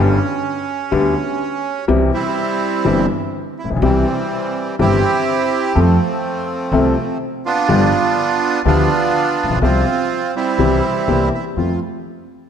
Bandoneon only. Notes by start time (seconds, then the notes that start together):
Already playing: C#4
2.14 G3 C4 E4
3.59 E4
3.83 E3 G3 C4
4.80 C4 E4 G4
5.78 F3 A3 C4
7.46 B3 D4 F4
8.67 B3 D4 F4
9.63 C4 F4
10.36 G3 C4 E4
11.34 E4
11.57 F4